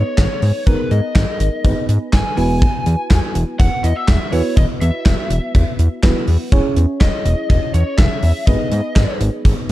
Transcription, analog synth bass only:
0.18 G#1
0.42 G#2
0.67 G#1
0.91 G#2
1.15 G#1
1.40 G#1
1.65 G#1
1.89 G#2
2.13 G#1
2.38 E1
2.86 E2
3.11 E1
3.35 E1
3.60 E1
3.84 E2
4.08 E1
4.33 E2
4.57 E1
4.81 E2
5.06 E1
5.30 E1
5.55 E1
5.79 E2
6.03 E1
6.28 E2
6.52 E1
6.77 E2
7.01 E1
7.25 E1
7.50 E1
7.74 E2
7.99 E1
8.23 E2
8.47 G#1
8.72 G#2
8.96 G#1
9.20 G#1
9.45 G#1

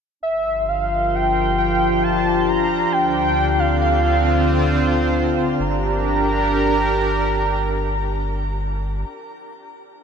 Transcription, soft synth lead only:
0.23 E5
0.69 F5
1.15 G5
1.58 G5
2.03 A5
2.48 A#5
2.92 G5
3.59 F5
3.82 F5
5.60 A#5

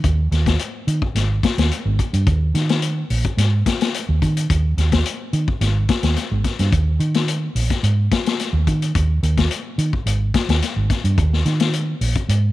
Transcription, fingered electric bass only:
0.04 D#2
0.32 D#2
0.87 D#3
1.15 G#1
1.58 D#2
1.85 G#1
2.13 G2
2.27 D#2
2.55 D#3
3.10 A#1
3.37 G#2
4.09 D#2
4.22 D#3
4.50 D#2
4.77 D#2
5.33 D#3
5.61 G#1
6.03 D#2
6.31 G#1
6.59 G2
6.72 D#2
7.00 D#3
7.55 A#1
7.83 G#2
8.53 D#2
8.67 D#3
8.95 D#2
9.23 D#2
9.78 D#3
10.06 G#1
10.49 D#2
10.76 G#1
11.04 G2
11.18 D#2
11.46 D#3
12.01 A#1
12.29 G#2

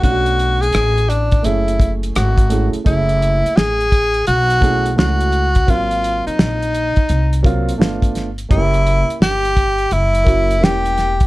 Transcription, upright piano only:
0.02 A3 C#4 D4 F4
0.11 F#4
1.43 A3 C#4 E4 G#4
2.49 A3 C#4 E4 G#4
2.84 A3 C#4 E4 G#4
4.61 A3 C#4 E4 G#4
4.96 A3 C#4 E4 F#4
5.67 F#3 A#3 C4 F4
7.43 F#3 A#3 C4 F4
7.78 A3 B3 D4 F4
8.49 A3 C#4 E4 G4
8.55 A#3
10.24 A#3 C#4 E4 F#4
10.59 A#3 C#4 E4 G4

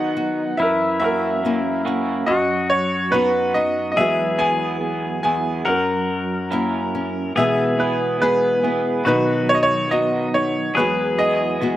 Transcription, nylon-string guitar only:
Already playing: D#3 D#4 F#4
0.17 F#4
0.59 F#2
1.45 A#3 C#4 E4
1.87 C#4
2.28 F#2
3.13 B3 D#4 F#4
3.55 D#4
3.98 E2 E3 G#3 B3 F#4
5.24 E2
5.66 F#2
6.52 A#3 C#4 E4
6.95 C#4
7.37 B2 E3 G#3 B3 G#4
8.22 G#3 B3 G#4
8.64 B3
9.06 B2 D#3 B3 D#4 F#4
9.91 B3 D#4 F#4
10.35 D#4
10.77 E2 E3 G#3 B3 F#4
11.61 G#3 B3 F#4

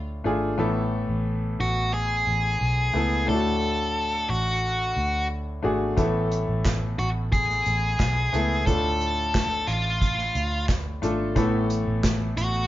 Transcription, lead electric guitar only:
1.60 F#4
1.94 G#4
3.29 A4
4.30 F#4
6.99 F#4
7.32 G#4
8.66 A4
9.67 F4
12.37 F#4

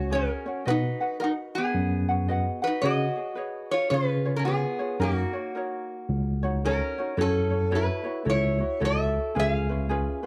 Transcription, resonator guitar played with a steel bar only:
Already playing: F#4
0.12 C#4 A#4
0.68 D#4 B4
1.20 D#4 A#4
1.55 B3 G#4
2.64 D#4 B4
2.82 F#4 D#5
3.71 F4 C#5
3.90 F4 C5
4.08 B4
4.36 C#4 A#4
4.45 B3 G#4
5.02 A#3 F#4
6.65 C#4 A#4
7.21 C#4 A4
7.75 E4 B4
8.30 E4 C#5
8.85 A4 E5
9.39 G#4 F5

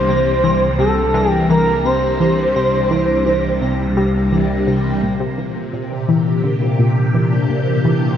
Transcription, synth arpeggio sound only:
0.08 C3
0.44 E3
0.79 C3
1.14 E3
1.50 E3
1.85 C3
2.20 E3
2.56 C3
2.91 E3
3.26 E3
3.62 C3
3.97 G3
4.32 E3
4.67 C3
5.03 A#2
5.38 E3
5.73 A#2
6.09 E3
6.44 D3
6.79 A#2
7.14 E3
7.50 A#2
7.85 E3

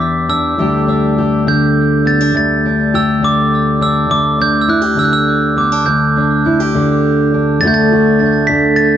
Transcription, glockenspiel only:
Already playing: D6
0.30 E6
1.48 G6
2.07 A6
2.37 A6
2.95 E6
3.24 D6
3.82 E6
4.11 D6
4.42 G6
4.62 E6
4.70 F#6
4.99 E6
5.04 F#6
5.13 E6
5.58 D6
5.86 G6
7.61 A6
7.68 G6
7.74 A6
8.47 B6
8.76 A6

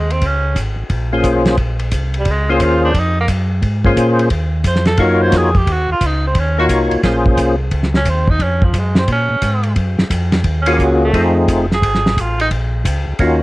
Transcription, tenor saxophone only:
Already playing: G#3
0.11 C4
0.26 C#4
2.19 G3
2.31 G#3
2.51 C4
2.64 F4
2.85 D4
2.99 D#4
3.21 A#3
4.68 C5
4.87 A4
5.03 A#4
5.22 C5
5.37 G#4
5.57 G4
5.72 F#4
5.92 F4
6.06 D#4
6.27 C4
6.39 C#4
6.59 F#4
7.96 C#4
8.09 C4
8.30 D#4
8.42 C#4
8.64 F3
8.78 G#3
8.98 C4
9.12 C#4
10.62 C#4
10.73 A#3
10.84 F#3
11.04 A3
11.74 G#4
12.21 F4
12.41 D#4

